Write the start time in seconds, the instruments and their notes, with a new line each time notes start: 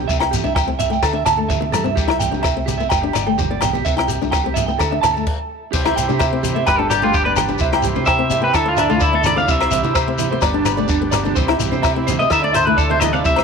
0.08 fingered electric bass C2, clean electric guitar E5, kick, shekere
0.19 nylon-string guitar E4, clean electric guitar G5, cross-stick, low agogo
0.31 clean electric guitar G4, closed hi-hat, low conga, shekere
0.44 fingered electric bass C2, nylon-string guitar D4, clean electric guitar E5, shekere
0.55 clean electric guitar G5, kick, cross-stick, low agogo, shekere
0.67 nylon-string guitar C4, muted clean electric guitar stroke
0.79 clean electric guitar E5, closed hi-hat, low conga, shekere
0.90 nylon-string guitar A3, clean electric guitar G5, shekere
1.02 fingered electric bass D2, clean electric guitar A4, kick, cross-stick, low agogo, shekere
1.13 nylon-string guitar D4, clean electric guitar E5
1.25 fingered electric bass D2, clean electric guitar A5, cross-stick, closed hi-hat, low agogo, shekere
1.37 nylon-string guitar A3, clean electric guitar A4
1.49 clean electric guitar E5, kick, high conga, low conga, shekere
1.60 nylon-string guitar B3, high conga
1.72 fingered electric bass G2, clean electric guitar A4, cross-stick, closed hi-hat, low conga, low agogo, shekere
1.84 nylon-string guitar C4, clean electric guitar E5, high conga
1.96 fingered electric bass C2, clean electric guitar G4, kick, shekere
2.08 nylon-string guitar E4, clean electric guitar E5, cross-stick, low agogo
2.20 clean electric guitar G5, closed hi-hat, low conga, shekere
2.31 fingered electric bass C2, nylon-string guitar D4, clean electric guitar G4, high conga, shekere
2.43 clean electric guitar E5, kick, cross-stick, low agogo, shekere
2.57 nylon-string guitar C4
2.66 clean electric guitar G4, closed hi-hat, high conga, low conga, shekere
2.78 nylon-string guitar B3, clean electric guitar E5, shekere
2.89 fingered electric bass G1, clean electric guitar G5, kick, cross-stick, low agogo, shekere
3.02 nylon-string guitar D4, clean electric guitar G4
3.13 fingered electric bass G1, clean electric guitar D5, cross-stick, closed hi-hat, low agogo, shekere
3.27 nylon-string guitar A3, clean electric guitar G5
3.38 clean electric guitar G4, kick, high conga, low conga, shekere
3.50 nylon-string guitar B3, clean electric guitar D5, high conga
3.61 fingered electric bass B1, clean electric guitar G5, cross-stick, closed hi-hat, low conga, low agogo, shekere
3.73 nylon-string guitar B3, clean electric guitar G4, high conga, shekere
3.85 fingered electric bass C2, clean electric guitar E5, kick, shekere
3.97 nylon-string guitar E4, clean electric guitar G5, cross-stick, low agogo
4.08 clean electric guitar G4, closed hi-hat, shekere
4.22 fingered electric bass C2, nylon-string guitar D4, high conga, shekere
4.31 clean electric guitar G5, kick, cross-stick, low agogo, shekere
4.44 nylon-string guitar C4, clean electric guitar G4
4.54 clean electric guitar E5, closed hi-hat, high conga, low conga, shekere
4.66 nylon-string guitar B3, clean electric guitar G5, shekere
4.79 fingered electric bass D2, clean electric guitar A4, kick, cross-stick, low agogo, shekere
4.91 nylon-string guitar D4, clean electric guitar E5
5.01 fingered electric bass D2, clean electric guitar A5, cross-stick, closed hi-hat, low agogo, shekere
5.13 nylon-string guitar A3, clean electric guitar A4, shekere
5.27 kick, crash
5.72 fingered electric bass C2, transistor combo organ E4 G4 C5, clean electric guitar G4, kick, crash, shekere
5.85 nylon-string guitar E4, clean electric guitar E5, cross-stick, low agogo
5.96 fingered electric bass C2, clean electric guitar G5, closed hi-hat, shekere
6.08 fingered electric bass C3, nylon-string guitar D4, clean electric guitar G4, high conga, shekere
6.19 clean electric guitar E5, kick, cross-stick, low agogo, shekere
6.33 nylon-string guitar C4
6.43 clean electric guitar G4, closed hi-hat, low conga, shekere
6.55 nylon-string guitar B3, clean electric guitar E5
6.66 fingered electric bass G1, transistor combo organ D4 B4, clean electric guitar B4 G5, kick, cross-stick, low agogo, shekere
6.79 nylon-string guitar D4, clean electric guitar G4 A4
6.90 clean electric guitar G4 D5, cross-stick, closed hi-hat, low agogo, shekere
7.02 nylon-string guitar A3, clean electric guitar F4 G5, high conga, shekere
7.12 clean electric guitar G4, kick, shekere
7.25 nylon-string guitar B3, clean electric guitar B4 D5
7.36 clean electric guitar G5, cross-stick, closed hi-hat, low conga, low agogo, shekere
7.48 nylon-string guitar D4, clean electric guitar G4, high conga, shekere
7.58 fingered electric bass C2, transistor combo organ E4 C5, clean electric guitar E5, kick, shekere
7.72 nylon-string guitar E4, clean electric guitar G5, cross-stick, low agogo
7.82 fingered electric bass C2, clean electric guitar G4, closed hi-hat, low conga, shekere
7.95 fingered electric bass C3, nylon-string guitar D4, clean electric guitar C5, high conga, shekere
8.06 clean electric guitar E5 G5, kick, cross-stick, low agogo, shekere
8.19 nylon-string guitar C4, clean electric guitar G4
8.30 clean electric guitar E5, closed hi-hat, low conga, shekere
8.42 nylon-string guitar B3, clean electric guitar B4 G5
8.53 fingered electric bass D2, transistor combo organ D4 A4, clean electric guitar E4 A4, kick, cross-stick, low agogo, shekere
8.66 nylon-string guitar D4, clean electric guitar F4
8.77 clean electric guitar D4 E5, cross-stick, closed hi-hat, low agogo, shekere
8.90 nylon-string guitar A3, clean electric guitar E4 F4, high conga, shekere
9.00 clean electric guitar E4 D5, kick, shekere
9.13 nylon-string guitar B3, clean electric guitar A4 E5
9.23 clean electric guitar E4 D5, cross-stick, closed hi-hat, low conga, low agogo, shekere
9.36 nylon-string guitar C4, clean electric guitar D5 F5, high conga, shekere
9.48 fingered electric bass C2, transistor combo organ C4 G4, clean electric guitar E4 E5, kick, shekere
9.60 clean electric guitar C5, cross-stick, low agogo
9.71 fingered electric bass C2, clean electric guitar E5, closed hi-hat, low conga, shekere
9.83 fingered electric bass C3, nylon-string guitar D4, clean electric guitar E4, high conga, shekere
9.95 clean electric guitar C5, kick, cross-stick, low agogo, shekere
10.08 nylon-string guitar C4
10.18 clean electric guitar E4, closed hi-hat, low conga, shekere
10.31 nylon-string guitar B3, clean electric guitar C5
10.41 fingered electric bass G1, transistor combo organ B3 D4, clean electric guitar D5, kick, cross-stick, low agogo, shekere
10.54 clean electric guitar D4, nylon-string guitar D4
10.65 clean electric guitar B4, cross-stick, closed hi-hat, low agogo, shekere
10.77 nylon-string guitar A3, clean electric guitar D5, high conga, shekere
10.88 clean electric guitar D4, kick, shekere
11.02 nylon-string guitar B3
11.11 clean electric guitar D5, cross-stick, closed hi-hat, low conga, low agogo, shekere
11.24 clean electric guitar D4, nylon-string guitar D4, high conga, shekere
11.35 fingered electric bass C2, transistor combo organ C4 E4, clean electric guitar C5, kick, low conga, shekere
11.48 nylon-string guitar E4, clean electric guitar E5, cross-stick, low agogo
11.59 fingered electric bass C2, clean electric guitar E4, closed hi-hat, low conga, shekere
11.72 fingered electric bass C3, nylon-string guitar D4, clean electric guitar C5, high conga, shekere
11.82 clean electric guitar E5, kick, cross-stick, low agogo, shekere
11.95 nylon-string guitar C4, clean electric guitar E4
12.07 clean electric guitar C5, closed hi-hat, high conga, low conga, shekere
12.19 nylon-string guitar B3, clean electric guitar D#5 E5, shekere
12.30 fingered electric bass D2, transistor combo organ D4 E4 A4, clean electric guitar E4 E5, kick, cross-stick, low agogo, shekere
12.42 clean electric guitar D5, muted nylon-string guitar stroke
12.53 clean electric guitar C5 E5, cross-stick, closed hi-hat, low agogo, shekere
12.66 nylon-string guitar A3, clean electric guitar E4 B4, high conga
12.77 clean electric guitar A4 D5, kick, shekere
12.90 nylon-string guitar B3, clean electric guitar C5 E5, high conga
13.00 clean electric guitar E4 D#5, cross-stick, closed hi-hat, low conga, low agogo, shekere
13.13 nylon-string guitar C4, clean electric guitar D5 F5, high conga, shekere
13.24 fingered electric bass C2, transistor combo organ C4 G4, clean electric guitar E4 E5, kick, shekere
13.36 nylon-string guitar E4, clean electric guitar C5, cross-stick, low agogo